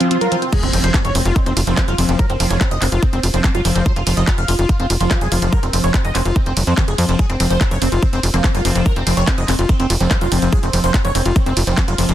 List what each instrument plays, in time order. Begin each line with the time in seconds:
Already playing: swell
0.00 acid bass F3, supersaw synth C4, closed hi-hat
0.11 acid bass F3, supersaw synth C4, closed hi-hat
0.21 acid bass F#3, supersaw synth A#4, closed hi-hat
0.32 acid bass F3, supersaw synth C4, closed hi-hat
0.42 supersaw synth C4, closed hi-hat
0.53 acid bass F#3, supersaw synth G#4, kick, closed hi-hat, crash, impact
0.63 analog synth bass F1, supersaw synth C4, synth arpeggio sound C4, closed hi-hat
0.73 analog synth bass F1, acid bass F3, synth arpeggio sound C4, supersaw synth C4, open hi-hat, ride
0.84 analog synth bass F1, acid bass F3, supersaw synth C5, closed hi-hat
0.94 supersaw synth C4, kick, clap, closed hi-hat
1.05 analog synth bass F1, supersaw synth C#5, closed hi-hat
1.15 analog synth bass F1, supersaw synth C4, open hi-hat, ride
1.25 analog synth bass F1, acid bass F4, closed hi-hat
1.36 acid bass D#3, supersaw synth C4, synth arpeggio sound D#4, kick, closed hi-hat
1.46 analog synth bass F1, acid bass C4, supersaw synth C4, synth arpeggio sound D#4, closed hi-hat
1.57 analog synth bass F1, acid bass F4, open hi-hat, ride
1.67 analog synth bass F1, acid bass F3, supersaw synth C4, closed hi-hat
1.78 supersaw synth C4, kick, clap, closed hi-hat
1.88 analog synth bass F1, acid bass F#3, supersaw synth F4, closed hi-hat
1.98 analog synth bass F1, acid bass F3, supersaw synth C4, open hi-hat, ride
2.09 analog synth bass F1, supersaw synth C4, closed hi-hat
2.19 acid bass F#3, supersaw synth A#4, kick, closed hi-hat
2.30 analog synth bass F1, supersaw synth C4, synth arpeggio sound C4, closed hi-hat
2.40 analog synth bass F1, acid bass F3, supersaw synth C4, open hi-hat, ride
2.50 analog synth bass F1, acid bass F3, supersaw synth C#5, closed hi-hat
2.61 supersaw synth C4, kick, clap, closed hi-hat
2.71 analog synth bass F1, supersaw synth D#5, closed hi-hat
2.82 analog synth bass F1, supersaw synth C4, clap, open hi-hat, ride
2.92 analog synth bass F1, acid bass F4, closed hi-hat
3.03 acid bass D#3, supersaw synth C4, kick, closed hi-hat
3.13 analog synth bass F1, supersaw synth C4, acid bass C4, closed hi-hat
3.23 analog synth bass F1, acid bass F4, open hi-hat, ride
3.34 analog synth bass F1, acid bass F3, supersaw synth C4, closed hi-hat
3.44 supersaw synth C4, kick, clap, closed hi-hat
3.55 analog synth bass F1, acid bass F#3, supersaw synth F4, closed hi-hat
3.65 analog synth bass F1, acid bass F3, supersaw synth C4, open hi-hat, ride
3.75 analog synth bass F1, supersaw synth C4, closed hi-hat
3.86 acid bass F#3, supersaw synth C5, kick, closed hi-hat
3.96 analog synth bass F1, supersaw synth F4, closed hi-hat
4.07 analog synth bass F1, acid bass F3, supersaw synth F4, open hi-hat, ride
4.17 analog synth bass F1, acid bass F3, supersaw synth D#5, closed hi-hat
4.28 supersaw synth F4, kick, clap, closed hi-hat
4.38 analog synth bass F1, supersaw synth F5, closed hi-hat
4.48 analog synth bass F1, supersaw synth F4, open hi-hat, ride
4.59 analog synth bass F1, acid bass F4, closed hi-hat
4.69 acid bass D#3, supersaw synth F4, kick, closed hi-hat
4.80 analog synth bass F1, acid bass C4, supersaw synth F4, closed hi-hat
4.90 analog synth bass F1, acid bass F4, open hi-hat, ride
5.00 analog synth bass F1, acid bass F3, supersaw synth F4, closed hi-hat
5.11 acid bass F3, supersaw synth F4, kick, clap, closed hi-hat
5.21 analog synth bass F1, acid bass F#3, supersaw synth G#4, closed hi-hat
5.32 analog synth bass F1, acid bass F3, supersaw synth F4, open hi-hat, ride
5.42 analog synth bass F1, supersaw synth F4, closed hi-hat
5.53 acid bass F#3, supersaw synth A#4, kick, closed hi-hat
5.63 analog synth bass F1, supersaw synth C4, closed hi-hat
5.73 analog synth bass F1, acid bass F3, supersaw synth C4, open hi-hat, ride
5.84 analog synth bass F1, acid bass F3, supersaw synth C#5, closed hi-hat
5.94 supersaw synth C4, kick, clap, closed hi-hat
6.05 analog synth bass F1, supersaw synth D#5, closed hi-hat
6.15 analog synth bass F1, supersaw synth C4, clap, open hi-hat, ride
6.25 analog synth bass F1, acid bass F4, closed hi-hat
6.36 acid bass D#3, supersaw synth C4, kick, closed hi-hat
6.46 analog synth bass F1, supersaw synth C4, acid bass C4, closed hi-hat
6.57 analog synth bass F1, acid bass F#3, open hi-hat, ride
6.67 analog synth bass F2, acid bass F3, supersaw synth C4, closed hi-hat
6.77 acid bass D#3, supersaw synth C4, kick, clap, closed hi-hat
6.88 analog synth bass F1, supersaw synth G#4, closed hi-hat
6.98 analog synth bass F2, acid bass F3, supersaw synth C4, open hi-hat, ride
7.09 analog synth bass F1, supersaw synth C4, closed hi-hat
7.19 acid bass F#3, supersaw synth G#4, kick, closed hi-hat
7.30 analog synth bass F1, synth arpeggio sound C4, supersaw synth C4, closed hi-hat
7.40 analog synth bass F1, acid bass F3, synth arpeggio sound C4, supersaw synth C4, open hi-hat, ride
7.50 analog synth bass F1, acid bass F3, supersaw synth C5, closed hi-hat
7.61 supersaw synth C4, kick, clap, closed hi-hat
7.71 analog synth bass F1, acid bass F3, supersaw synth C#5, closed hi-hat
7.82 analog synth bass F1, supersaw synth C4, open hi-hat, ride
7.92 analog synth bass F1, acid bass F4, closed hi-hat
8.02 acid bass D#3, supersaw synth C4, kick, closed hi-hat
8.13 analog synth bass F1, supersaw synth C4, acid bass C4, closed hi-hat
8.23 analog synth bass F1, acid bass F4, open hi-hat, ride
8.34 analog synth bass F1, acid bass F3, synth arpeggio sound A#3, supersaw synth C4, closed hi-hat
8.44 supersaw synth C4, kick, clap, closed hi-hat
8.55 analog synth bass F1, acid bass F#3, synth arpeggio sound A#3, supersaw synth F4, closed hi-hat
8.65 analog synth bass F1, acid bass F3, supersaw synth C4, open hi-hat, ride
8.75 analog synth bass F1, supersaw synth C4, closed hi-hat
8.86 acid bass F#3, supersaw synth A#4, kick, closed hi-hat
8.96 analog synth bass F1, supersaw synth C4, closed hi-hat
9.07 analog synth bass F1, acid bass F3, supersaw synth C4, synth arpeggio sound C4, open hi-hat, ride
9.17 analog synth bass F1, acid bass F3, synth arpeggio sound C4, supersaw synth C#5, closed hi-hat
9.28 supersaw synth C4, kick, clap, closed hi-hat
9.38 analog synth bass F1, acid bass F3, supersaw synth D#5, closed hi-hat
9.48 analog synth bass F1, supersaw synth C4, clap, open hi-hat, ride
9.59 analog synth bass F1, acid bass F4, closed hi-hat
9.69 acid bass D#3, supersaw synth C4, kick, closed hi-hat
9.80 analog synth bass F1, supersaw synth C4, acid bass C4, closed hi-hat
9.90 analog synth bass F1, acid bass F4, open hi-hat, ride
10.00 analog synth bass F1, acid bass F3, supersaw synth C4, closed hi-hat
10.11 kick, clap, closed hi-hat
10.21 analog synth bass F1, acid bass F#3, supersaw synth F4, closed hi-hat
10.32 analog synth bass F1, acid bass F3, supersaw synth C4, open hi-hat, ride
10.42 analog synth bass F1, supersaw synth C4, closed hi-hat
10.53 acid bass F#3, supersaw synth G#4, kick, closed hi-hat
10.63 analog synth bass F1, supersaw synth C4, closed hi-hat
10.73 analog synth bass F1, acid bass F3, supersaw synth C4, open hi-hat, ride
10.84 analog synth bass F1, acid bass F3, supersaw synth C5, closed hi-hat
10.94 supersaw synth C4, kick, clap, closed hi-hat
11.05 analog synth bass F1, acid bass F3, supersaw synth C#5, closed hi-hat
11.15 analog synth bass F1, supersaw synth C4, open hi-hat, ride
11.25 analog synth bass F1, acid bass F4, closed hi-hat
11.36 acid bass D#3, supersaw synth C4, kick, closed hi-hat
11.46 analog synth bass F1, acid bass C4, supersaw synth C4, closed hi-hat
11.57 analog synth bass F1, acid bass F4, open hi-hat, ride
11.67 analog synth bass F1, acid bass F3, supersaw synth C4, closed hi-hat
11.78 supersaw synth C4, kick, clap, closed hi-hat
11.88 analog synth bass F1, acid bass F#3, supersaw synth F4, closed hi-hat
11.98 analog synth bass F1, acid bass F3, supersaw synth C4, open hi-hat, ride
12.09 analog synth bass F1, supersaw synth C4, closed hi-hat